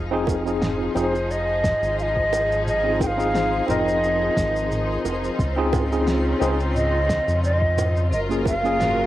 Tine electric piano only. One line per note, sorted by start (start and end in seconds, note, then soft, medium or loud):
0.11 0.41 C4 medium
0.11 0.41 D#4 medium
0.11 0.42 F4 medium
0.11 0.42 G#4 loud
0.45 0.92 C4 medium
0.45 0.92 D#4 medium
0.45 0.92 F4 medium
0.45 0.93 G#4 medium
0.95 1.12 C4 medium
0.95 1.12 D#4 medium
0.95 1.13 F4 medium
0.95 1.13 G#4 medium
2.84 3.08 C4 medium
2.84 3.08 D#4 medium
2.84 3.09 F4 medium
2.84 3.09 G#4 medium
3.18 3.64 C4 medium
3.18 3.65 D#4 medium
3.18 3.65 F4 medium
3.18 3.65 G#4 medium
3.66 5.36 C4 medium
3.66 5.37 D#4 medium
3.66 5.37 F4 medium
3.66 5.38 A#4 medium
5.56 5.87 C4 loud
5.56 5.87 D#4 medium
5.56 5.87 F4 medium
5.56 5.88 G#4 loud
5.91 6.37 C4 medium
5.91 6.37 D#4 medium
5.91 6.38 F4 medium
5.91 6.38 G#4 medium
6.40 6.57 C4 medium
6.40 6.58 D#4 medium
6.40 6.58 F4 medium
6.40 6.58 G#4 loud
8.29 8.53 A#3 medium
8.29 8.54 C#4 medium
8.29 8.54 F4 medium
8.29 8.54 G#4 medium
8.63 9.06 A#3 medium
8.63 9.06 C#4 medium
8.63 9.06 F4 medium
8.63 9.06 G#4 medium